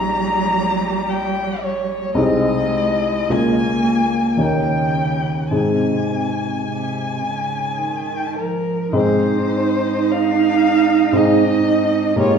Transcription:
0.00 2.11 A#1 soft
0.00 2.15 G3 medium
0.00 2.11 C#4 soft
0.00 2.11 D#4 soft
0.00 2.11 G4 soft
0.00 1.11 A#5 medium
1.09 1.63 G5 medium
1.62 2.16 C#5 medium
2.14 3.26 C2 soft
2.14 3.30 G#3 medium
2.14 3.26 C4 soft
2.14 3.26 D#4 soft
2.14 3.27 G#4 soft
2.14 3.32 D#5 medium
3.29 4.35 C#2 soft
3.29 4.40 A#3 soft
3.29 4.36 A#3 soft
3.29 4.36 F4 soft
3.29 4.36 A#4 soft
3.29 4.42 G#5 medium
4.37 5.48 D#2 soft
4.37 5.50 C#3 soft
4.37 5.48 C#4 soft
4.37 5.48 D#4 soft
4.37 5.49 A#4 soft
4.37 5.53 G5 medium
5.51 8.89 G#2 soft
5.51 6.54 C3 soft
5.51 8.90 C4 soft
5.51 8.90 D#4 soft
5.51 8.90 G#4 soft
5.51 8.33 G#5 medium
6.68 7.24 C3 soft
7.23 7.80 C#3 soft
7.78 8.38 D#3 soft
8.36 8.92 F3 soft
8.36 8.90 A#4 medium
8.93 11.10 G#2 soft
8.93 11.10 C4 soft
8.93 12.19 D#4 medium
8.93 11.10 D#4 soft
8.93 11.11 G#4 soft
8.93 10.13 C5 medium
10.11 11.18 F5 medium
11.12 12.14 G#2 soft
11.12 12.15 C4 soft
11.12 12.15 D#4 soft
11.12 12.15 G#4 soft
11.16 12.18 D#5 medium
12.16 12.38 G#2 medium
12.16 12.38 A#3 soft
12.16 12.38 D#4 soft
12.16 12.38 F4 medium
12.16 12.38 G4 soft
12.16 12.38 C#5 medium

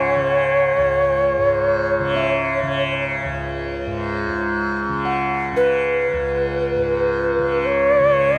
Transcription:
0.00 0.77 C#2 medium
0.00 1.37 G#2 medium
0.00 0.16 C#3 medium
0.00 3.07 C#5 medium
0.00 4.78 F#5 medium
0.16 2.00 C#3 medium
0.77 3.24 C#2 medium
1.38 3.86 G#2 medium
2.00 2.63 C#3 medium
2.16 4.76 E5 soft
2.63 4.89 C#3 medium
3.24 6.12 C#2 medium
3.87 4.28 G#2 medium
4.28 6.76 G#2 soft
4.89 5.52 C#3 medium
5.05 8.38 F#5 soft
5.52 7.39 C#3 medium
5.57 7.67 B4 medium
6.13 8.38 C#2 medium
6.76 8.38 G#2 soft
7.39 8.00 C#3 medium
7.66 8.38 C#5 medium
8.00 8.38 C#3 medium

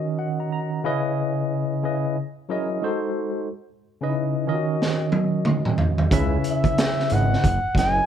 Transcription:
0.00 0.44 D#3 medium
0.00 0.45 C#4 medium
0.00 0.49 F#4 medium
0.00 0.45 A#4 medium
0.00 0.85 D#5 medium
0.19 0.37 F#5 medium
0.40 0.51 A#5 medium
0.52 0.82 A#5 medium
0.84 1.78 C#3 loud
0.84 1.78 C#4 loud
0.84 1.79 E4 loud
0.84 1.79 B4 loud
0.84 1.79 D#5 loud
1.83 2.16 C#3 medium
1.83 2.16 C#4 medium
1.83 2.16 E4 medium
1.83 2.17 B4 medium
1.83 2.17 D#5 medium
2.49 2.82 F#3 medium
2.49 2.82 C#4 medium
2.49 2.82 E4 medium
2.49 2.82 G#4 medium
2.49 2.82 A#4 medium
2.49 2.83 D#5 loud
2.82 3.45 G#3 medium
2.82 3.45 D#4 medium
2.82 3.45 F#4 medium
2.82 3.45 A4 medium
2.82 3.46 C5 loud
4.01 4.46 C#3 medium
4.01 4.46 C#4 medium
4.01 4.06 D#4 medium
4.01 4.47 B4 medium
4.01 4.48 D#5 medium
4.09 4.50 E4 medium
4.47 5.72 D#3 medium
4.47 5.73 C#4 medium
4.47 4.55 F4 medium
4.47 5.73 A#4 medium
4.47 5.73 D#5 medium
4.54 5.76 F#4 medium
4.82 snare medium
5.12 high tom medium
5.45 mid tom medium
5.65 mid tom medium
5.78 floor tom medium
5.98 floor tom medium
6.11 6.38 C#2 loud
6.11 7.05 C#3 loud
6.11 7.06 C#4 loud
6.11 6.20 D#4 medium
6.11 7.06 B4 loud
6.11 7.06 E5 loud
6.11 kick loud
6.11 closed hi-hat medium
6.19 7.09 E4 loud
6.44 closed hi-hat medium
6.48 7.15 E5 medium
6.64 kick medium
6.64 closed hi-hat soft
6.78 snare loud
6.78 closed hi-hat medium
6.99 snare soft
7.10 7.37 G#1 medium
7.10 7.43 C#3 medium
7.10 7.43 C#4 medium
7.10 7.44 E4 medium
7.10 7.44 B4 medium
7.10 7.44 D#5 medium
7.10 7.78 F#5 loud
7.10 closed hi-hat medium
7.33 snare soft
7.44 7.60 F#1 loud
7.44 kick medium
7.44 closed hi-hat medium
7.65 7.69 F#1 soft
7.75 8.02 F#1 medium
7.75 8.06 F#3 medium
7.75 8.06 C#4 medium
7.75 8.06 E4 medium
7.75 8.06 G#4 medium
7.75 8.06 A#4 medium
7.75 8.06 D#5 medium
7.75 kick medium
7.75 snare soft
7.75 closed hi-hat medium
7.79 8.06 G#5 loud

